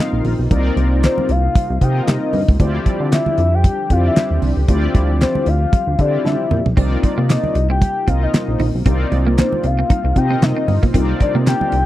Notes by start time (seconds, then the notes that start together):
Already playing: C3 A#3 C4 D#4 F4 A#4 D#5 F5
0.00 clap
0.13 A#1
0.24 A#1, open hi-hat, muted conga, low conga
0.39 B1
0.50 C2 C4 D#4 F4 A#4 D5, kick, closed hi-hat, muted conga, low conga
0.76 C2, closed hi-hat, muted conga, high conga
1.03 C5, snare, clap, closed hi-hat
1.18 high conga, low conga
1.29 C2 F5, closed hi-hat, muted conga
1.55 kick, closed hi-hat, high conga
1.70 C2
1.81 C3 C4 D#4 F4 A#4 D#5 G5, kick, closed hi-hat, muted conga
2.03 F5
2.07 C3 D#5, snare, clap, closed hi-hat, muted conga, high conga
2.33 G2, open hi-hat, low conga
2.48 C#2, kick
2.59 D2 D3 F3 C4 D4 E4 F4 G4 D5, kick, closed hi-hat, muted conga, low conga
2.86 kick, closed hi-hat, high conga
3.00 D3
3.12 E5, snare, clap, closed hi-hat, muted conga
3.26 high conga, low conga
3.38 F2, closed hi-hat
3.55 G5
3.64 kick, closed hi-hat, high conga
3.90 F2 C4 E4 F4 G4 D5 F5, kick, closed hi-hat, muted conga
4.07 E5
4.16 snare, clap, closed hi-hat, muted conga, high conga
4.31 D#2
4.42 C2, open hi-hat, muted conga, low conga
4.57 C#2
4.68 D2 C4 E4 F4 G4 D5, kick, closed hi-hat, muted conga, low conga
4.95 D2, kick, closed hi-hat, muted conga, high conga
5.21 C5, snare, clap, closed hi-hat
5.35 high conga, low conga
5.46 D2 F5, closed hi-hat, muted conga
5.72 kick, closed hi-hat, muted conga, high conga
5.87 D2
5.98 D3 C4 E4 F4 G4 D5, kick, closed hi-hat, muted conga
6.25 D3 E5, snare, high conga
6.51 A#2, mid tom, low conga
6.66 B1, floor tom
6.76 C2 C3 A#3 C4 D#4 F4 A#4 D5, kick, splash, muted conga, low conga
7.03 muted clean electric guitar stroke, kick, closed hi-hat, muted conga, high conga
7.18 C3 A#3
7.29 A#3 D#5, snare, clap, closed hi-hat
7.44 high conga, low conga
7.55 C2, muted clean electric guitar stroke, closed hi-hat, muted conga
7.70 C4 G5
7.81 kick, closed hi-hat, muted conga, high conga
8.07 C2 C4 D#4 F4 A#4 D#5 F5, kick, closed hi-hat, muted conga
8.23 D#5
8.34 snare, clap, closed hi-hat, muted conga, high conga
8.48 A#1
8.59 A#1 D#4, open hi-hat, muted conga, low conga
8.74 B1
8.85 C2 C4 D#4 F4 A#4 D5, kick, closed hi-hat, low conga
9.12 C2, muted clean electric guitar stroke, closed hi-hat, muted conga, high conga
9.27 A#3
9.38 A#3 C5, snare, clap, closed hi-hat
9.53 high conga, low conga
9.64 C2 F5, muted clean electric guitar stroke, closed hi-hat, muted conga
9.79 C4
9.90 D#4, kick, closed hi-hat, muted conga, high conga
10.04 C2, muted clean electric guitar stroke
10.16 C3 C4 D#4 F4 A#4 D#5 G5, kick, closed hi-hat, muted conga
10.31 C4
10.42 C3 D#5, snare, clap, closed hi-hat, muted conga, high conga
10.57 C4
10.68 G2, muted clean electric guitar stroke, open hi-hat, muted conga, low conga
10.83 B1 A#3, kick
10.94 C2 C4 D#4 F4 A#4 D5, kick, closed hi-hat, muted conga, low conga
11.20 D5, muted clean electric guitar stroke, kick, closed hi-hat, high conga
11.35 C3 A#3
11.46 A#3 G5, snare, clap, closed hi-hat, muted conga
11.61 high conga, low conga
11.72 C2, muted clean electric guitar stroke, closed hi-hat, muted conga